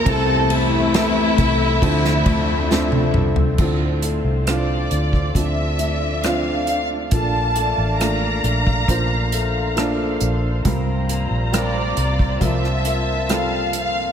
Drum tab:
CC |----------------|x---------------|----------------|----------------|
RD |x-x-x-x-x-x-----|----------------|----------------|----------------|
HH |----------------|--x-x-x-x-x-x-x-|x-x-x-x-x-x-x-x-|x-x-x-x-x-x-x-x-|
SD |----o----o--o---|----r-------r---|----r-------r---|----r----r--r---|
T1 |-------------o--|----------------|----------------|----------------|
T2 |--------------o-|----------------|----------------|----------------|
FT |---------------o|----------------|----------------|----------------|
BD |o-----o-o-o-----|o------oo-------|o------oo-------|o------oo-------|